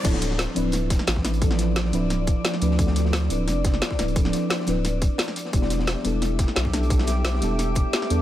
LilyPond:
<<
  \new Staff \with { instrumentName = "Ambient pad" } { \time 4/4 \key e \phrygian \tempo 4 = 175 <f d''>1~ | <f d''>1~ | <f d''>1~ | <f d''>1 |
<g' e'' d'''>1~ | <g' e'' d'''>1 | }
  \new Staff \with { instrumentName = "Synth stab" } { \time 4/4 \key e \phrygian <f c' d' e' a'>4. <f c' d' e' b'>2 <f c' d' e' b'>8 | <f c' d' e' a'>4. <f c' d' e' b'>2 <f c' d' e' b'>8 | <f c' d' e' a'>4. <f c' d' e' b'>2 <f c' d' e' b'>8 | <f c' d' e' a'>4. <f c' d' e' b'>2 r8 |
<g b d' e' g'>4. <g b d' e' a'>2 <g b d' e' a'>8 | <g b d' e' g'>4. <g b d' e' a'>2 <g b d' e' a'>8 | }
  \new Staff \with { instrumentName = "Sub bass" } { \clef bass \time 4/4 \key e \phrygian d,,4 r8 d,,4 r8 a,,4~ | a,,4. d,,4 r4 d,8~ | d,4. d,,8 f,,4 r8 d,,8~ | d,,8 r4 d,,4 r4. |
e,,4 r8 e,,4 r8 b,,4~ | b,,4. e,,4 r4 e,8 | }
  \new DrumStaff \with { instrumentName = "Drums" } \drummode { \time 4/4 <cymc hh bd>16 sn16 <hh sn>16 sn16 <hh sn>16 sn16 hh8 <hh sn>8 <hh bd sn>16 sn16 <hh sn>16 <bd sn>16 <hh sn>16 hh16 | <hh bd>16 sn16 <hh sn>8 <hh sn>16 sn16 <hh sn>8 <hh sn>8 <hh bd>8 <hh sn>16 sn16 hh16 sn16 | <hh bd>16 sn16 <hh sn>16 sn16 <hh sn>16 sn16 hh8 <hh sn>8 <hh bd sn>16 sn16 <hh sn>16 <bd sn>16 <hh sn>16 hh16 | <hh bd>16 sn16 <hh sn>8 <hh sn>16 sn16 <hh sn>8 <hh sn>8 <hh bd>8 <hh sn>16 sn16 hh16 sn16 |
<hh bd>16 sn16 <hh sn>16 sn16 <hh sn>16 sn16 hh8 <hh sn>8 <hh bd sn>16 sn16 <hh sn>16 <bd sn>16 <hh sn>16 hh16 | <hh bd>16 sn16 <hh sn>8 <hh sn>16 sn16 <hh sn>8 <hh sn>8 <hh bd>8 <hh sn>16 sn16 hh8 | }
>>